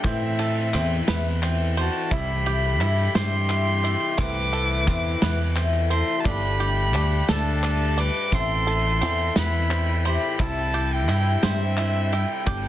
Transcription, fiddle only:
0, 0, Header, 1, 2, 480
1, 0, Start_track
1, 0, Tempo, 690449
1, 31, Time_signature, 6, 3, 24, 8
1, 8817, End_track
2, 0, Start_track
2, 0, Title_t, "Fiddle"
2, 0, Program_c, 0, 110
2, 35, Note_on_c, 0, 76, 97
2, 992, Note_off_c, 0, 76, 0
2, 1251, Note_on_c, 0, 81, 87
2, 1474, Note_on_c, 0, 83, 112
2, 1484, Note_off_c, 0, 81, 0
2, 2191, Note_on_c, 0, 84, 109
2, 2202, Note_off_c, 0, 83, 0
2, 2909, Note_on_c, 0, 86, 127
2, 2919, Note_off_c, 0, 84, 0
2, 3867, Note_off_c, 0, 86, 0
2, 4116, Note_on_c, 0, 84, 98
2, 4309, Note_on_c, 0, 81, 81
2, 4319, Note_off_c, 0, 84, 0
2, 4359, Note_on_c, 0, 83, 125
2, 4369, Note_off_c, 0, 81, 0
2, 5072, Note_off_c, 0, 83, 0
2, 5081, Note_on_c, 0, 81, 97
2, 5557, Note_on_c, 0, 86, 113
2, 5567, Note_off_c, 0, 81, 0
2, 5803, Note_on_c, 0, 84, 127
2, 5813, Note_off_c, 0, 86, 0
2, 6514, Note_off_c, 0, 84, 0
2, 6519, Note_on_c, 0, 83, 108
2, 6965, Note_off_c, 0, 83, 0
2, 6997, Note_on_c, 0, 83, 99
2, 7237, Note_on_c, 0, 81, 110
2, 7248, Note_off_c, 0, 83, 0
2, 7603, Note_on_c, 0, 79, 100
2, 7613, Note_off_c, 0, 81, 0
2, 7709, Note_off_c, 0, 79, 0
2, 7713, Note_on_c, 0, 79, 102
2, 7959, Note_on_c, 0, 76, 95
2, 7970, Note_off_c, 0, 79, 0
2, 8430, Note_on_c, 0, 79, 84
2, 8440, Note_off_c, 0, 76, 0
2, 8667, Note_off_c, 0, 79, 0
2, 8671, Note_on_c, 0, 79, 110
2, 8817, Note_off_c, 0, 79, 0
2, 8817, End_track
0, 0, End_of_file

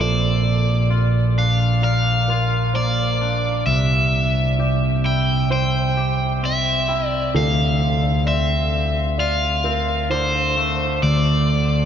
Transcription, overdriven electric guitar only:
0, 0, Header, 1, 2, 480
1, 0, Start_track
1, 0, Tempo, 920245
1, 1913, Time_signature, 4, 2, 24, 8
1, 6182, End_track
2, 0, Start_track
2, 0, Title_t, "Overdriven electric guitar"
2, 0, Program_c, 0, 29
2, 4, Note_on_c, 0, 74, 55
2, 721, Note_off_c, 0, 74, 0
2, 723, Note_on_c, 0, 77, 57
2, 954, Note_off_c, 0, 77, 0
2, 960, Note_on_c, 0, 77, 60
2, 1436, Note_off_c, 0, 77, 0
2, 1438, Note_on_c, 0, 74, 56
2, 1909, Note_off_c, 0, 74, 0
2, 1911, Note_on_c, 0, 76, 68
2, 2612, Note_off_c, 0, 76, 0
2, 2638, Note_on_c, 0, 79, 68
2, 2859, Note_off_c, 0, 79, 0
2, 2882, Note_on_c, 0, 79, 63
2, 3337, Note_off_c, 0, 79, 0
2, 3366, Note_on_c, 0, 76, 58
2, 3689, Note_off_c, 0, 76, 0
2, 3689, Note_on_c, 0, 74, 58
2, 3819, Note_off_c, 0, 74, 0
2, 3841, Note_on_c, 0, 77, 73
2, 4296, Note_off_c, 0, 77, 0
2, 4317, Note_on_c, 0, 76, 60
2, 4797, Note_off_c, 0, 76, 0
2, 4799, Note_on_c, 0, 77, 67
2, 5273, Note_off_c, 0, 77, 0
2, 5275, Note_on_c, 0, 72, 60
2, 5751, Note_off_c, 0, 72, 0
2, 5753, Note_on_c, 0, 74, 62
2, 6182, Note_off_c, 0, 74, 0
2, 6182, End_track
0, 0, End_of_file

